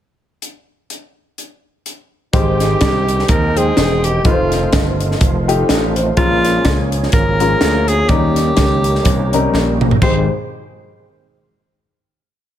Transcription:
0.42 closed hi-hat
0.90 closed hi-hat
1.38 closed hi-hat
1.86 closed hi-hat
2.33 slap bass G#1, upright piano G#2 G#3 D#4 G4 C5, tonewheel organ D#3 G#3 C4 G5, french horn section G#3 D#4 C5 D#5, tenor saxophone G4, kick, closed hi-hat
2.60 snare, closed hi-hat
2.81 slap bass C2, kick, snare, closed hi-hat
3.08 closed hi-hat
3.19 snare
3.28 slap bass D#2, tenor saxophone A#4, kick, closed hi-hat
3.56 upright piano G#3 D#4 C5 G5, tenor saxophone G#4, closed hi-hat
3.77 slap bass E1, snare, closed hi-hat
4.04 tenor saxophone G4, closed hi-hat
4.25 slap bass F1, upright piano A3 D#4 F4 B4, tonewheel organ A3 F4, french horn section F4 A4, tenor saxophone F4, kick, closed hi-hat
4.31 upright piano C5
4.52 snare, closed hi-hat
4.73 slap bass G1, kick, snare, closed hi-hat
5.01 closed hi-hat
5.11 snare
5.21 slap bass F1, kick, closed hi-hat
5.48 upright piano A3 D#4 F4 G4, closed hi-hat
5.69 slap bass A1, upright piano D#5, snare, closed hi-hat
5.96 upright piano C5, closed hi-hat
6.17 slap bass A#1, upright piano A#2 G#3 C#4 F4 A#4, tonewheel organ F3 A#3 C#4 G#4, tenor saxophone F4, french horn section G#4 A#4 C#5, kick, closed hi-hat
6.45 snare, closed hi-hat
6.65 slap bass C#2, kick, snare, closed hi-hat
6.92 closed hi-hat
7.03 snare
7.12 slap bass G#1, tenor saxophone A#4, kick, closed hi-hat
7.40 upright piano G#3 C#4 F4 A#4, closed hi-hat
7.61 slap bass D2, snare, closed hi-hat
7.88 tenor saxophone G#4, closed hi-hat
8.09 slap bass D#2, upright piano D#3 G3 C#4 D#4 A#4, tonewheel organ D#3 G4, french horn section D#4 G4, tenor saxophone G4, kick, closed hi-hat
8.36 snare, closed hi-hat
8.57 slap bass C#2, kick, snare, closed hi-hat
8.84 closed hi-hat
8.95 snare
9.05 slap bass C2, kick, closed hi-hat
9.33 upright piano G3 C#4 D#4 A#4, closed hi-hat
9.54 slap bass A#1, snare
9.81 mid tom
9.91 floor tom
10.01 slap bass G#1, upright piano G#1 G#3 D#4 G4 C5, tonewheel organ D#3 G#3 C4 G4, french horn section D#4 G4 G#4 C5, tenor saxophone C5, kick, crash

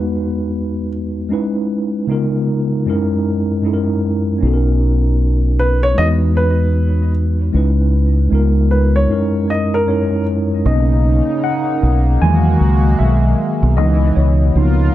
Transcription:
Already playing: tine electric piano E2 G#3 B3 D#4 F#4 B4, grand piano B4
1.29 tine electric piano G#3 C#4 D#4 E4
1.33 tine electric piano B4
2.07 tine electric piano C#3 G#3 B3 D#4 F4
2.12 tine electric piano A#4
2.85 tine electric piano F#2 G#3 C#4 D#4 E4
2.90 tine electric piano A#4
3.63 tine electric piano F#2 G#3 C#4 D#4 E4
3.67 tine electric piano A4
3.74 tine electric piano A#4
4.38 tine electric piano B3 C#4
4.43 fingered electric bass B1, tine electric piano D#4 F#4
4.47 tine electric piano A4
4.53 tine electric piano A#4
5.59 grand piano B4
5.83 grand piano C#5
5.94 fingered electric bass E2, tine electric piano G#3 B3, grand piano D#5
5.99 tine electric piano D#4 F#4
6.03 tine electric piano B4
6.37 grand piano B4
7.52 fingered electric bass C#2, tine electric piano G#3 C#4 D#4 E4
7.56 tine electric piano B4
8.31 fingered electric bass C#2, tine electric piano G#3 B3 D#4 F4
8.35 tine electric piano A#4
8.71 grand piano B4
8.96 grand piano C#5
9.08 tine electric piano F#2 G#3 C#4 D#4 E4
9.12 tine electric piano A#4
9.50 grand piano D#5
9.74 grand piano A#4
9.86 tine electric piano F#2 G#3 C#4 D#4 E4 C#5
9.91 tine electric piano A#4
10.66 fingered electric bass B1, analog synth pad C#3 A#3 D#4, tine electric piano A#3 C#4 D#4 D#5
11.44 tine electric piano F#5
11.83 fingered electric bass B1
12.22 fingered electric bass E2, tine electric piano D#3 F#3 G#3 A#3 G#5, analog synth pad G#3 F#4
12.61 fingered electric bass C#2
12.99 fingered electric bass B1, tine electric piano E5
13.63 fingered electric bass B1
13.77 fingered electric bass C#2, analog synth pad B2 E3, tine electric piano E3 B3 D#4 D#5
14.16 fingered electric bass C#2, tine electric piano C#5
14.55 fingered electric bass C#2, tine electric piano F3 A#3 B3 D#4, analog synth pad F4 A#4

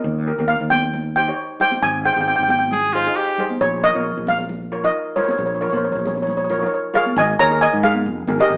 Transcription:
Already playing: steel pan D#5
0.04 fretless electric bass D#2
0.27 steel pan D#4 G4 A#4
0.38 fretless electric bass D#2, steel pan D#4 G4 A#4, high conga
0.48 steel pan F5
0.61 fretless electric bass D#2
0.70 steel pan G5, high conga, low conga
0.83 high conga
0.93 low conga
1.16 steel pan D#4 G4 C5 G5
1.28 steel pan D#4 G4 C#5
1.60 steel pan D#4 G4 C5 G5, low conga
1.72 high conga
1.82 fretless electric bass G#1, steel pan G#5
2.05 steel pan D#4 G#4 C5 G5
2.13 fretless electric bass G#1, steel pan G5, high conga
2.17 steel pan D#4 G#4 G5
2.28 steel pan G5
2.36 fretless electric bass G#1, steel pan G5
2.43 steel pan G5
2.49 steel pan G5, high conga, low conga
2.59 steel pan G5, high conga
2.71 trumpet G#4, low conga
2.93 steel pan D#4 G#4 C5, trumpet F4
3.06 steel pan D#4 G#4
3.16 trumpet G4
3.38 steel pan D#4 G#4 C5, low conga
3.50 high conga
3.61 fretless electric bass A#1, steel pan C#5
3.83 steel pan F4 A#4 C#5 D#5
3.94 fretless electric bass A#1, steel pan F4 A#4 C#5, high conga
4.17 fretless electric bass A#1
4.27 steel pan F5, high conga, low conga
4.39 high conga
4.49 low conga
4.72 steel pan F4 A#4 C#5
4.83 steel pan D#4 F4 A#4 D#5
5.16 steel pan F4 A#4 C5 C#5, low conga
5.24 steel pan C#5
5.28 steel pan C#5, high conga
5.38 fretless electric bass A#1, steel pan C#5
5.46 steel pan C#5
5.55 steel pan C#5
5.61 steel pan F4 A#4 C#5
5.69 fretless electric bass A#1, steel pan F4 A#4 C#5, high conga
5.74 steel pan C5 C#5
5.84 steel pan C#5
5.92 fretless electric bass A#1, steel pan C#5
5.99 steel pan C#5
6.06 steel pan C#5, high conga, low conga
6.15 steel pan C#5, high conga
6.22 steel pan C#5
6.27 steel pan C#5, low conga
6.37 steel pan C#5
6.44 steel pan C#5
6.50 steel pan F4 A#4 C#5, low conga
6.59 steel pan D#4 F4 A#4 C#5
6.66 steel pan C#5
6.74 steel pan C#5
6.94 steel pan F4 G#4 A#4 C#5 F5, low conga
7.06 high conga
7.16 fretless electric bass G#1, steel pan D#5 G#5
7.39 fretless electric bass D#2, steel pan D#4 G#4 A#4 C#5 A#5
7.50 steel pan D#4 G#4 A#4
7.61 steel pan D#5 G#5
7.73 fretless electric bass G#2
7.83 steel pan G#4 F5, low conga
7.95 high conga
8.06 fretless electric bass F1
8.27 fretless electric bass G#1, steel pan D#4 G#4 A#4, high conga, low conga
8.39 steel pan D#4 G4 G#4 A#4 D#5
8.50 fretless electric bass G#1

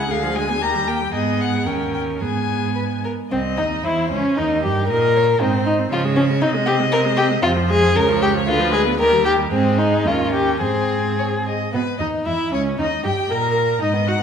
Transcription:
Already playing: cello C#2, violin G#4 F#5
0.09 cello D2, viola D3, violin F5
0.23 viola F3
0.35 viola G#3, violin G#5
0.49 viola B3
0.61 cello D#2, viola D#3, violin G4 A#5
0.75 viola G3
0.88 viola A#3, violin G5
1.01 viola G3
1.13 cello G#2, viola B3, violin G#4 D#5
1.41 violin F#5
1.65 cello D#2, viola C#4, violin A#4 G5
1.94 violin G5
2.21 cello G#2, viola B3, violin G#4 G#5
2.75 violin B4
3.04 violin A#4
3.31 cello C2, violin C4 D#5, viola C4
3.57 cello D#2, violin D#4, viola D#4
3.84 cello E2, violin E4 C5, viola E4
4.11 cello C#2, violin C#4, viola C#4
4.37 cello D#2, violin D#4 A#4, viola D#4
4.64 cello G2, violin G4, viola G4
4.88 cello A#2, violin A#4 D#5, viola A#4
5.16 violin C#5
5.41 cello G#2, violin C4 C5, viola D#4
5.53 viola C4
5.66 violin D#4, viola D#4
5.79 viola C4
5.92 cello C#3, viola F3, violin F4 C#5
6.05 viola G#3
6.16 viola F3, violin C#4
6.30 viola G#3
6.42 cello C3, viola C4, violin D#4 D#5
6.55 viola G#3
6.66 viola C4, violin G4
6.80 viola G#3
6.92 viola C4, violin A#4
7.05 viola G#3
7.17 viola C4, violin G4
7.31 viola G#3
7.42 cello F2, viola C3, violin F4 C5
7.57 viola F3
7.70 viola G#3, violin G#4
7.82 viola F3
7.95 cello C#2, viola C#3, violin A#4 C#5
8.08 viola F3
8.21 viola G#3, violin G4
8.34 viola F3
8.47 cello D2, viola D3, violin F4 B4
8.60 viola F3
8.73 viola G#3, violin G#4
8.86 viola B3
8.99 cello D#2, viola D#3, violin G4 A#4
9.12 viola G3
9.25 viola D#3, violin G4
9.38 viola G3
9.51 cello G#2, viola G#3, violin C4 G#4
9.78 violin D#4
10.05 cello D#2, viola C#4, violin F4 A#4
10.33 violin G4
10.61 cello G#2, viola C4, violin G#4 C5
11.19 violin C#5
11.47 violin D#5
11.73 cello B2, violin B3 B4, viola B3
11.99 cello D#2, violin D#4 D#5, viola D#4
12.26 cello E2, violin E4 E5, viola E4
12.52 cello C#2, violin C#4 C#5, viola C#4
12.78 cello D#2, violin D#4 D#5, viola D#4
13.03 cello G2, violin G4 G5, viola G4
13.30 cello A#2, violin A#4 A#5, viola A#4
13.81 cello G#2, violin D#4 D#5, viola D#4
13.93 violin B3
14.07 violin D#4 F#5, viola F#4
14.20 violin B3

